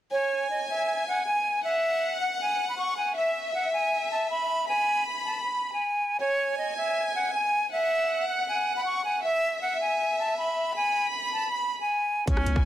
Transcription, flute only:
0, 0, Header, 1, 2, 480
1, 0, Start_track
1, 0, Tempo, 379747
1, 155, Time_signature, 4, 2, 24, 8
1, 15991, End_track
2, 0, Start_track
2, 0, Title_t, "Flute"
2, 0, Program_c, 0, 73
2, 153, Note_on_c, 0, 73, 103
2, 606, Note_off_c, 0, 73, 0
2, 637, Note_on_c, 0, 75, 74
2, 836, Note_off_c, 0, 75, 0
2, 875, Note_on_c, 0, 76, 89
2, 1327, Note_off_c, 0, 76, 0
2, 1359, Note_on_c, 0, 78, 81
2, 1558, Note_off_c, 0, 78, 0
2, 1597, Note_on_c, 0, 80, 86
2, 2047, Note_off_c, 0, 80, 0
2, 2072, Note_on_c, 0, 76, 113
2, 2750, Note_off_c, 0, 76, 0
2, 2790, Note_on_c, 0, 78, 84
2, 2992, Note_off_c, 0, 78, 0
2, 3042, Note_on_c, 0, 80, 81
2, 3377, Note_off_c, 0, 80, 0
2, 3396, Note_on_c, 0, 83, 75
2, 3496, Note_off_c, 0, 83, 0
2, 3515, Note_on_c, 0, 85, 69
2, 3715, Note_off_c, 0, 85, 0
2, 3751, Note_on_c, 0, 80, 75
2, 3953, Note_off_c, 0, 80, 0
2, 3991, Note_on_c, 0, 76, 105
2, 4444, Note_off_c, 0, 76, 0
2, 4476, Note_on_c, 0, 78, 84
2, 4676, Note_off_c, 0, 78, 0
2, 4715, Note_on_c, 0, 80, 84
2, 5167, Note_off_c, 0, 80, 0
2, 5198, Note_on_c, 0, 81, 76
2, 5397, Note_off_c, 0, 81, 0
2, 5435, Note_on_c, 0, 83, 77
2, 5886, Note_off_c, 0, 83, 0
2, 5917, Note_on_c, 0, 80, 112
2, 6357, Note_off_c, 0, 80, 0
2, 6635, Note_on_c, 0, 81, 80
2, 6835, Note_off_c, 0, 81, 0
2, 6874, Note_on_c, 0, 83, 85
2, 7213, Note_off_c, 0, 83, 0
2, 7239, Note_on_c, 0, 80, 77
2, 7801, Note_off_c, 0, 80, 0
2, 7835, Note_on_c, 0, 73, 105
2, 8287, Note_off_c, 0, 73, 0
2, 8317, Note_on_c, 0, 75, 76
2, 8516, Note_off_c, 0, 75, 0
2, 8556, Note_on_c, 0, 76, 87
2, 9007, Note_off_c, 0, 76, 0
2, 9039, Note_on_c, 0, 78, 79
2, 9238, Note_off_c, 0, 78, 0
2, 9276, Note_on_c, 0, 80, 91
2, 9727, Note_off_c, 0, 80, 0
2, 9751, Note_on_c, 0, 76, 114
2, 10430, Note_off_c, 0, 76, 0
2, 10471, Note_on_c, 0, 78, 83
2, 10673, Note_off_c, 0, 78, 0
2, 10722, Note_on_c, 0, 80, 86
2, 11057, Note_off_c, 0, 80, 0
2, 11075, Note_on_c, 0, 83, 76
2, 11175, Note_off_c, 0, 83, 0
2, 11194, Note_on_c, 0, 85, 72
2, 11395, Note_off_c, 0, 85, 0
2, 11431, Note_on_c, 0, 80, 76
2, 11633, Note_off_c, 0, 80, 0
2, 11670, Note_on_c, 0, 76, 106
2, 12124, Note_off_c, 0, 76, 0
2, 12155, Note_on_c, 0, 78, 87
2, 12356, Note_off_c, 0, 78, 0
2, 12395, Note_on_c, 0, 80, 82
2, 12847, Note_off_c, 0, 80, 0
2, 12878, Note_on_c, 0, 81, 75
2, 13077, Note_off_c, 0, 81, 0
2, 13113, Note_on_c, 0, 83, 76
2, 13565, Note_off_c, 0, 83, 0
2, 13597, Note_on_c, 0, 80, 110
2, 13992, Note_off_c, 0, 80, 0
2, 14315, Note_on_c, 0, 81, 78
2, 14515, Note_off_c, 0, 81, 0
2, 14554, Note_on_c, 0, 83, 87
2, 14893, Note_off_c, 0, 83, 0
2, 14918, Note_on_c, 0, 80, 81
2, 15481, Note_off_c, 0, 80, 0
2, 15514, Note_on_c, 0, 61, 110
2, 15966, Note_off_c, 0, 61, 0
2, 15991, End_track
0, 0, End_of_file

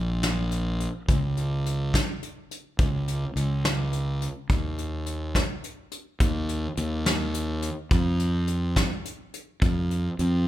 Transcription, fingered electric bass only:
0, 0, Header, 1, 2, 480
1, 0, Start_track
1, 0, Key_signature, -5, "major"
1, 0, Tempo, 568720
1, 921, Time_signature, 6, 3, 24, 8
1, 8843, End_track
2, 0, Start_track
2, 0, Title_t, "Fingered electric bass"
2, 0, Program_c, 0, 33
2, 0, Note_on_c, 0, 34, 97
2, 725, Note_off_c, 0, 34, 0
2, 913, Note_on_c, 0, 37, 86
2, 1684, Note_off_c, 0, 37, 0
2, 2355, Note_on_c, 0, 37, 95
2, 2741, Note_off_c, 0, 37, 0
2, 2833, Note_on_c, 0, 37, 102
2, 3604, Note_off_c, 0, 37, 0
2, 3795, Note_on_c, 0, 39, 82
2, 4565, Note_off_c, 0, 39, 0
2, 5237, Note_on_c, 0, 39, 104
2, 5623, Note_off_c, 0, 39, 0
2, 5718, Note_on_c, 0, 39, 107
2, 6488, Note_off_c, 0, 39, 0
2, 6677, Note_on_c, 0, 41, 98
2, 7448, Note_off_c, 0, 41, 0
2, 8118, Note_on_c, 0, 41, 106
2, 8504, Note_off_c, 0, 41, 0
2, 8602, Note_on_c, 0, 41, 107
2, 8843, Note_off_c, 0, 41, 0
2, 8843, End_track
0, 0, End_of_file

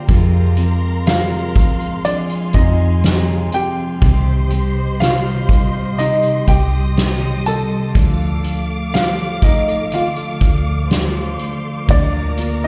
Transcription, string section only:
0, 0, Header, 1, 2, 480
1, 0, Start_track
1, 0, Key_signature, -3, "minor"
1, 0, Tempo, 983607
1, 42, Time_signature, 4, 2, 24, 8
1, 6185, End_track
2, 0, Start_track
2, 0, Title_t, "String section"
2, 0, Program_c, 0, 48
2, 38, Note_on_c, 0, 77, 67
2, 39, Note_on_c, 0, 56, 64
2, 40, Note_on_c, 0, 84, 79
2, 1941, Note_off_c, 0, 77, 0
2, 1942, Note_off_c, 0, 56, 0
2, 1942, Note_off_c, 0, 84, 0
2, 1962, Note_on_c, 0, 67, 70
2, 1964, Note_on_c, 0, 75, 66
2, 1965, Note_on_c, 0, 84, 80
2, 3863, Note_off_c, 0, 67, 0
2, 3864, Note_off_c, 0, 75, 0
2, 3864, Note_off_c, 0, 84, 0
2, 3882, Note_on_c, 0, 86, 81
2, 3883, Note_on_c, 0, 77, 61
2, 3884, Note_on_c, 0, 69, 70
2, 5784, Note_off_c, 0, 69, 0
2, 5801, Note_on_c, 0, 70, 71
2, 6185, Note_off_c, 0, 70, 0
2, 6185, Note_off_c, 0, 77, 0
2, 6185, Note_off_c, 0, 86, 0
2, 6185, End_track
0, 0, End_of_file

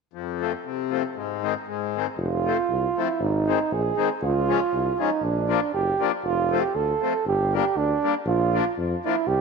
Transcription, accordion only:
0, 0, Header, 1, 2, 480
1, 0, Start_track
1, 0, Tempo, 512821
1, 127, Time_signature, 2, 2, 24, 8
1, 3485, Tempo, 505051
1, 8889, End_track
2, 0, Start_track
2, 0, Title_t, "Accordion"
2, 0, Program_c, 0, 21
2, 127, Note_on_c, 0, 41, 45
2, 374, Note_on_c, 0, 53, 59
2, 382, Note_on_c, 0, 57, 41
2, 393, Note_on_c, 0, 60, 55
2, 482, Note_off_c, 0, 53, 0
2, 486, Note_off_c, 0, 57, 0
2, 491, Note_off_c, 0, 60, 0
2, 494, Note_off_c, 0, 41, 0
2, 609, Note_on_c, 0, 48, 51
2, 845, Note_on_c, 0, 53, 45
2, 855, Note_on_c, 0, 57, 49
2, 865, Note_on_c, 0, 60, 60
2, 956, Note_off_c, 0, 53, 0
2, 961, Note_off_c, 0, 57, 0
2, 966, Note_off_c, 0, 60, 0
2, 972, Note_off_c, 0, 48, 0
2, 1082, Note_on_c, 0, 44, 54
2, 1331, Note_on_c, 0, 51, 64
2, 1335, Note_on_c, 0, 56, 54
2, 1347, Note_on_c, 0, 60, 64
2, 1436, Note_off_c, 0, 51, 0
2, 1438, Note_off_c, 0, 56, 0
2, 1444, Note_off_c, 0, 44, 0
2, 1444, Note_off_c, 0, 60, 0
2, 1566, Note_on_c, 0, 44, 56
2, 1836, Note_on_c, 0, 51, 47
2, 1837, Note_on_c, 0, 56, 51
2, 1845, Note_on_c, 0, 60, 61
2, 1928, Note_off_c, 0, 44, 0
2, 1929, Note_off_c, 0, 51, 0
2, 1929, Note_off_c, 0, 56, 0
2, 1933, Note_off_c, 0, 60, 0
2, 2293, Note_on_c, 0, 53, 51
2, 2306, Note_on_c, 0, 57, 48
2, 2315, Note_on_c, 0, 60, 52
2, 2399, Note_off_c, 0, 53, 0
2, 2406, Note_off_c, 0, 57, 0
2, 2410, Note_off_c, 0, 60, 0
2, 2777, Note_on_c, 0, 57, 46
2, 2778, Note_on_c, 0, 53, 46
2, 2791, Note_on_c, 0, 60, 54
2, 2881, Note_off_c, 0, 57, 0
2, 2882, Note_off_c, 0, 53, 0
2, 2888, Note_off_c, 0, 60, 0
2, 3246, Note_on_c, 0, 51, 59
2, 3257, Note_on_c, 0, 56, 53
2, 3262, Note_on_c, 0, 60, 60
2, 3354, Note_off_c, 0, 51, 0
2, 3360, Note_off_c, 0, 56, 0
2, 3362, Note_off_c, 0, 60, 0
2, 3718, Note_on_c, 0, 51, 61
2, 3722, Note_on_c, 0, 56, 40
2, 3733, Note_on_c, 0, 60, 59
2, 3830, Note_off_c, 0, 51, 0
2, 3832, Note_off_c, 0, 56, 0
2, 3838, Note_off_c, 0, 60, 0
2, 4202, Note_on_c, 0, 53, 54
2, 4208, Note_on_c, 0, 56, 50
2, 4221, Note_on_c, 0, 61, 67
2, 4310, Note_off_c, 0, 53, 0
2, 4314, Note_off_c, 0, 56, 0
2, 4320, Note_off_c, 0, 61, 0
2, 4689, Note_on_c, 0, 53, 47
2, 4690, Note_on_c, 0, 56, 48
2, 4701, Note_on_c, 0, 61, 54
2, 4792, Note_off_c, 0, 53, 0
2, 4792, Note_off_c, 0, 56, 0
2, 4798, Note_off_c, 0, 61, 0
2, 5158, Note_on_c, 0, 58, 44
2, 5161, Note_on_c, 0, 53, 51
2, 5166, Note_on_c, 0, 62, 70
2, 5267, Note_off_c, 0, 58, 0
2, 5269, Note_off_c, 0, 53, 0
2, 5271, Note_off_c, 0, 62, 0
2, 5646, Note_on_c, 0, 53, 48
2, 5650, Note_on_c, 0, 58, 38
2, 5663, Note_on_c, 0, 62, 61
2, 5754, Note_off_c, 0, 53, 0
2, 5756, Note_off_c, 0, 58, 0
2, 5763, Note_off_c, 0, 62, 0
2, 6136, Note_on_c, 0, 53, 56
2, 6136, Note_on_c, 0, 57, 51
2, 6149, Note_on_c, 0, 60, 65
2, 6242, Note_off_c, 0, 53, 0
2, 6242, Note_off_c, 0, 57, 0
2, 6249, Note_off_c, 0, 60, 0
2, 6618, Note_on_c, 0, 53, 48
2, 6621, Note_on_c, 0, 60, 45
2, 6624, Note_on_c, 0, 57, 47
2, 6725, Note_off_c, 0, 53, 0
2, 6726, Note_off_c, 0, 60, 0
2, 6728, Note_off_c, 0, 57, 0
2, 7105, Note_on_c, 0, 55, 56
2, 7109, Note_on_c, 0, 58, 55
2, 7125, Note_on_c, 0, 62, 66
2, 7208, Note_off_c, 0, 55, 0
2, 7210, Note_off_c, 0, 58, 0
2, 7218, Note_off_c, 0, 62, 0
2, 7578, Note_on_c, 0, 55, 53
2, 7586, Note_on_c, 0, 58, 48
2, 7591, Note_on_c, 0, 62, 57
2, 7681, Note_off_c, 0, 55, 0
2, 7685, Note_off_c, 0, 58, 0
2, 7688, Note_off_c, 0, 62, 0
2, 8059, Note_on_c, 0, 53, 64
2, 8066, Note_on_c, 0, 58, 54
2, 8069, Note_on_c, 0, 62, 61
2, 8160, Note_off_c, 0, 53, 0
2, 8163, Note_off_c, 0, 58, 0
2, 8165, Note_off_c, 0, 62, 0
2, 8548, Note_on_c, 0, 53, 53
2, 8555, Note_on_c, 0, 58, 56
2, 8558, Note_on_c, 0, 62, 63
2, 8644, Note_off_c, 0, 53, 0
2, 8647, Note_off_c, 0, 58, 0
2, 8649, Note_off_c, 0, 62, 0
2, 8889, End_track
0, 0, End_of_file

